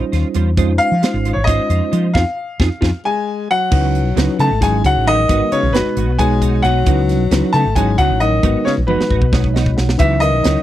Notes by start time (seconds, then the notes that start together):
Already playing: G3 C#4 D#4 F4 C5
0.02 muted fretless electric bass stroke
0.12 D#2 C#4 F4 C5, snare, closed hi-hat
0.34 E2 G3 C#4 F4 C5, closed hi-hat
0.57 F2 G#3 C#4 D#4 F4 C5, kick, closed hi-hat
0.78 F5, closed hi-hat
0.92 F3
1.02 G#3 C#4 D#4 F4 C5, snare, closed hi-hat
1.14 G#1
1.25 D#4 F4 C5, closed hi-hat
1.33 G#1 C#5
1.44 G#3 D#4 F4 C5 D#5, kick, closed hi-hat
1.48 C#4 D#4 F4 C5
1.59 muted fretless electric bass stroke
1.70 F2 D#4 F4 C5, closed hi-hat
1.92 F3 G#3 D#4 F4 C5, closed hi-hat
2.14 F2 C4 D#4 F4 G#4 F5, kick, snare
2.60 F2 C4 D#4 F4 G#4, kick, snare
2.81 F2 C4 D#4 F4 G#4, kick, snare
3.05 G#3 G#5
3.50 F#3 F#5
3.71 C#2 E3 F#3 B3 C#4 D#4 E4 F#4 B4, kick, crash
3.95 closed hi-hat
4.06 B1
4.16 C#2 E3 F#3 B3 C#4 D#4 E4 F#4 B4, snare, closed hi-hat
4.39 C#3 A3 B3 D#4 F#4 A5, closed hi-hat
4.51 G#1
4.61 E3 F#3 G#3 B3 C#4 D#4 E4 F#4 G#4 G#5, kick, snare, closed hi-hat
4.84 C#2 F#3 F#5, kick, closed hi-hat
4.96 A1
5.06 D#3 E3 B3 D#4 F#4 D#5, closed hi-hat
5.28 G#1 G#3 B3 D#4 F#4 B4, kick, closed hi-hat
5.52 C#3 C#5, muted fretless electric bass stroke, closed hi-hat
5.63 B1
5.73 F#1 B2 G#3 B3 D#4 F#4 B4, snare, closed hi-hat
5.86 muted fretless electric bass stroke
5.97 G#1 D#4 F#4, closed hi-hat
6.07 B1
6.19 G#3 B3 D#4 F#4 C#5 G#5, kick, closed hi-hat
6.42 D#4 F#4, kick, closed hi-hat
6.62 B1 F#3 B3 D#4 F#4 F#5, closed hi-hat
6.86 C#2 E3 F#3 B3 C#4 D#4 E4 F#4 B4, kick, closed hi-hat
7.09 snare, closed hi-hat
7.20 B1
7.31 C#2 E3 F#3 B3 C#4 D#4 E4 F#4 B4, snare, closed hi-hat
7.53 C#3 A3 B3 D#4 F#4 A5, closed hi-hat
7.65 G#1
7.75 E3 F#3 G#3 B3 C#4 D#4 E4 F#4 C#5 G#5, kick, closed hi-hat
7.98 C#2 F#3 B3 D#4 F#4 F#5, kick, closed hi-hat
8.10 A1
8.20 D#3 D#5, closed hi-hat
8.42 G#1 F#3 G#3 B3 D#4 F#4 B4, kick, closed hi-hat
8.65 C#3 C#5, muted fretless electric bass stroke, snare
8.77 B1, high tom
8.87 F#1 B2 F#3 G#3 B3 D#4 F#4 B4, high tom
9.01 snare
9.10 G#1 B3 D#4 F#4, kick
9.22 B1, kick
9.32 F#3 G#3 B3 D#4 F#4 C#5, kick, snare
9.44 kick
9.54 B3 D#4 F#4 D#5, snare
9.66 kick
9.77 B1 F#5, snare
9.89 snare
9.97 C#2 E3 F#3 B3 C#4 D#4 E4 F#4 B4 E5, kick, closed hi-hat
10.20 D#3 D#5, closed hi-hat
10.34 B1
10.43 C#2 E3 F#3 B3 C#4 D#4 E4 F#4 C#5, snare, closed hi-hat